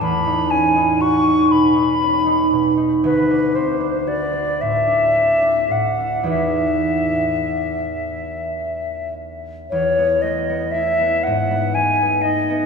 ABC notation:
X:1
M:6/8
L:1/16
Q:3/8=39
K:E
V:1 name="Flute"
b2 g2 c'2 b6 | B2 =c2 =d2 e4 f2 | e8- e2 z2 | c2 d2 e2 f2 g2 d2 |]
V:2 name="Harp"
[E,,F] D C D F D B,, D C D B,, D | =D,, =D =C D F D A,, D C D A,, D | [E,,DFGB]12 | E,, B, A, B, E B, G,, B, A, B, D B, |]